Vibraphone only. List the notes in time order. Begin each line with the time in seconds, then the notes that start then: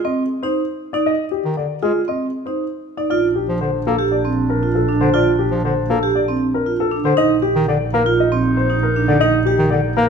0.05 C4
0.43 D#4
0.94 D#4
1.83 F4
2.08 C4
2.47 D#4
2.98 D#4
3.11 F4
3.99 G4
4.25 C4
4.63 F4
4.89 D4
5.14 F4
6.03 G4
6.28 C4
6.66 F4
6.92 D4
7.17 D#4
7.42 G4
8.06 F4
8.32 C4
8.70 D#4
8.96 D4
9.21 D#4
9.47 G4